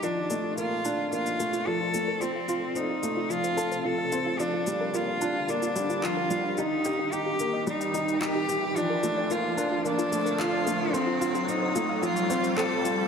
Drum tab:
SH |x-x-x-x-xxxx--x-|x-x-x-x-xxxx--x-|x-x-x-x-xxxx--x-|x-x-x-x-xxxx--x-|
CP |----------------|----------------|------------x---|------------x---|

SH |x-x-x-x-xxxx--x-|x-xxx-x-xxxx--x-|
CP |------------x---|------------x---|